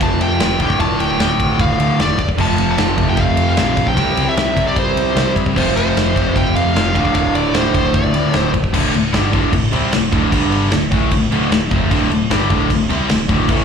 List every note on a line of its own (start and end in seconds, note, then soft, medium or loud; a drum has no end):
0.00 0.20 F1 loud
0.00 0.38 F2 medium
0.00 0.58 F2 loud
0.00 0.39 C3 medium
0.00 0.59 C3 loud
0.00 0.42 F3 medium
0.00 0.62 F3 loud
0.00 0.21 A5 loud
0.00 kick loud
0.00 ride loud
0.20 0.39 F2 medium
0.20 0.58 G5 loud
0.20 ride medium
0.40 0.59 E1 medium
0.40 0.59 F2 medium
0.40 0.59 C3 medium
0.40 0.62 F3 loud
0.40 snare loud
0.40 ride loud
0.59 0.79 D1 loud
0.59 1.18 D2 loud
0.59 1.19 A2 loud
0.59 1.19 D3 loud
0.59 0.80 G5 loud
0.59 kick medium
0.59 ride medium
0.70 kick medium
0.80 0.99 D1 medium
0.80 1.00 A5 loud
0.80 kick medium
0.80 ride loud
1.00 1.19 D1 medium
1.00 1.20 G5 medium
1.00 ride medium
1.19 1.39 D1 loud
1.19 1.77 D2 medium
1.19 1.78 A2 medium
1.19 1.77 D3 medium
1.19 1.61 G5 loud
1.19 snare loud
1.19 ride loud
1.40 1.59 D1 medium
1.40 kick medium
1.40 ride medium
1.59 1.78 D1 loud
1.59 2.01 F5 loud
1.59 kick loud
1.59 ride medium
1.78 1.98 D2 medium
1.78 2.18 D2 medium
1.78 2.18 A2 medium
1.78 2.17 D3 medium
1.78 ride medium
1.99 2.37 E1 medium
1.99 2.28 D5 loud
1.99 snare loud
1.99 ride medium
2.18 kick medium
2.18 ride medium
2.29 kick medium
2.38 2.58 F1 medium
2.38 2.97 F2 medium
2.38 2.97 C3 medium
2.38 2.95 F3 loud
2.38 2.70 A5 loud
2.38 kick medium
2.38 crash loud
2.58 2.78 F1 medium
2.58 ride medium
2.71 3.09 A5 loud
2.78 2.97 F1 loud
2.78 snare loud
2.78 ride loud
2.97 3.17 F1 medium
2.97 3.54 F2 medium
2.97 3.56 C3 medium
2.97 3.56 F3 medium
2.97 kick medium
2.97 ride medium
3.10 3.19 G5 medium
3.17 3.37 F1 loud
3.17 3.48 F5 loud
3.17 kick loud
3.17 ride loud
3.37 3.57 F2 medium
3.37 ride medium
3.49 3.89 F5 loud
3.55 3.96 A#1 medium
3.55 3.95 F2 medium
3.55 3.94 C3 medium
3.55 3.96 F3 loud
3.55 snare loud
3.55 ride loud
3.77 kick medium
3.77 ride medium
3.87 4.28 G5 loud
3.87 kick medium
3.95 4.16 C2 loud
3.95 4.55 C3 medium
3.95 4.55 G3 medium
3.95 4.55 C4 loud
3.95 kick medium
3.95 ride loud
4.17 4.36 C2 medium
4.17 ride medium
4.29 4.67 E5 loud
4.37 4.56 C2 medium
4.37 snare loud
4.37 ride loud
4.55 4.76 C2 medium
4.55 5.14 C3 medium
4.55 5.15 G3 medium
4.55 5.14 C4 medium
4.55 kick medium
4.55 ride medium
4.67 4.77 D5 medium
4.76 4.95 C2 loud
4.76 5.33 C5 medium
4.76 kick loud
4.76 ride loud
4.96 5.15 C2 medium
4.96 ride medium
5.15 5.54 C2 medium
5.15 5.54 C3 medium
5.15 5.55 G3 medium
5.15 5.56 C4 medium
5.15 snare loud
5.15 ride loud
5.36 kick medium
5.36 ride medium
5.46 kick medium
5.54 5.75 F1 medium
5.54 6.13 F2 medium
5.54 6.14 C3 loud
5.54 6.14 F3 medium
5.54 5.75 C5 medium
5.54 kick medium
5.54 crash loud
5.75 5.95 F1 medium
5.75 6.38 C5 medium
5.75 ride medium
5.95 6.14 F1 loud
5.95 snare loud
5.95 ride loud
6.15 6.35 F1 medium
6.15 6.73 F2 medium
6.15 6.74 C3 medium
6.15 6.76 F3 medium
6.15 kick medium
6.15 ride medium
6.36 6.54 F1 loud
6.36 6.55 G5 loud
6.36 kick loud
6.36 ride loud
6.55 6.74 F2 medium
6.55 6.94 F5 loud
6.55 ride medium
6.74 6.94 F1 loud
6.74 6.93 F2 medium
6.74 6.94 C3 medium
6.74 6.96 F3 medium
6.74 snare loud
6.74 ride loud
6.94 7.14 D1 loud
6.94 7.52 D2 medium
6.94 7.53 A2 loud
6.94 7.54 D3 loud
6.94 7.13 F5 medium
6.94 kick medium
6.94 ride medium
7.05 kick medium
7.15 7.34 D1 loud
7.15 7.35 F5 loud
7.15 kick loud
7.15 ride loud
7.34 7.53 D1 medium
7.34 7.55 D5 medium
7.34 ride medium
7.53 7.74 D1 loud
7.53 8.12 D2 medium
7.53 8.13 A2 medium
7.53 8.11 D3 medium
7.53 7.74 C5 medium
7.53 snare loud
7.53 ride loud
7.74 7.93 D1 medium
7.74 7.95 C5 medium
7.74 kick medium
7.74 ride medium
7.94 8.13 D1 loud
7.94 8.38 D5 medium
7.94 kick loud
7.94 ride loud
8.12 8.33 D2 medium
8.12 8.53 D2 medium
8.12 8.53 A2 medium
8.12 8.52 D3 medium
8.12 ride medium
8.33 8.72 D1 medium
8.33 snare loud
8.33 ride loud
8.38 8.50 C5 medium
8.54 kick medium
8.54 ride medium
8.64 kick medium
8.73 8.92 D1 medium
8.73 8.91 D2 medium
8.73 8.92 A2 medium
8.73 8.93 D3 loud
8.73 kick loud
8.73 crash loud
8.73 crash medium
8.93 9.12 D1 medium
8.93 9.09 D2 medium
8.93 9.09 A2 medium
8.93 crash medium
9.13 9.32 G1 loud
9.13 9.32 G2 loud
9.13 9.32 D3 loud
9.13 9.33 G3 loud
9.13 snare loud
9.13 crash medium
9.32 9.52 D1 medium
9.32 9.52 D2 medium
9.32 9.52 A2 medium
9.32 9.52 D3 loud
9.32 kick loud
9.32 crash medium
9.53 9.71 D1 medium
9.53 9.69 D2 medium
9.53 9.69 A2 medium
9.53 kick medium
9.53 crash medium
9.72 9.92 C2 medium
9.72 9.92 C3 medium
9.72 9.92 G3 loud
9.72 9.92 C4 loud
9.72 crash medium
9.92 10.11 D1 medium
9.92 10.08 D2 medium
9.92 10.08 A2 medium
9.92 snare loud
9.92 crash medium
10.12 10.31 D1 loud
10.12 10.30 D2 loud
10.12 10.31 A2 loud
10.12 10.30 D3 loud
10.12 kick loud
10.12 crash medium
10.31 10.69 G1 medium
10.31 10.70 G2 loud
10.31 10.71 D3 loud
10.31 10.71 G3 loud
10.31 kick loud
10.31 crash medium
10.52 crash medium
10.71 10.91 D1 medium
10.71 10.87 D2 medium
10.71 10.87 A2 medium
10.71 snare loud
10.71 crash medium
10.91 11.10 A1 loud
10.91 11.10 A2 medium
10.91 11.11 E3 medium
10.91 11.11 A3 loud
10.91 kick loud
10.91 crash medium
11.11 11.30 D1 medium
11.11 11.27 D2 medium
11.11 11.28 A2 medium
11.11 kick medium
11.11 crash medium
11.31 11.50 D1 loud
11.31 11.50 D2 medium
11.31 11.51 A2 medium
11.31 11.51 D3 loud
11.31 crash medium
11.52 11.70 D1 medium
11.52 11.67 D2 medium
11.52 11.67 A2 medium
11.52 snare loud
11.52 crash medium
11.71 11.90 F1 loud
11.71 11.90 F2 loud
11.71 11.90 C3 loud
11.71 11.90 F3 loud
11.71 kick loud
11.71 crash medium
11.91 12.09 D1 loud
11.91 12.10 D2 medium
11.91 12.10 A2 loud
11.91 12.10 D3 loud
11.91 kick loud
11.91 crash medium
12.11 12.29 D1 medium
12.11 12.26 D2 medium
12.11 12.27 A2 medium
12.11 crash medium
12.30 12.48 G1 loud
12.30 12.49 G2 medium
12.30 12.50 D3 medium
12.30 12.50 G3 loud
12.30 snare loud
12.30 crash medium
12.50 12.68 D1 medium
12.50 12.69 D2 loud
12.50 12.69 A2 medium
12.50 12.70 D3 loud
12.50 kick loud
12.50 crash medium
12.70 12.89 D1 medium
12.70 12.86 D2 medium
12.70 12.86 A2 medium
12.70 kick medium
12.70 crash medium
12.90 13.08 C2 medium
12.90 13.09 C3 medium
12.90 13.09 G3 loud
12.90 13.09 C4 loud
12.90 crash medium
13.09 13.28 D1 medium
13.09 13.25 D2 medium
13.09 13.25 A2 medium
13.09 snare loud
13.09 crash medium
13.29 13.48 D1 loud
13.29 13.48 D2 loud
13.29 13.47 A2 loud
13.29 13.48 D3 loud
13.29 kick loud
13.29 crash medium
13.48 13.64 A1 medium
13.48 13.64 A2 medium
13.48 13.64 E3 medium
13.48 13.64 A3 loud
13.48 kick loud
13.48 crash medium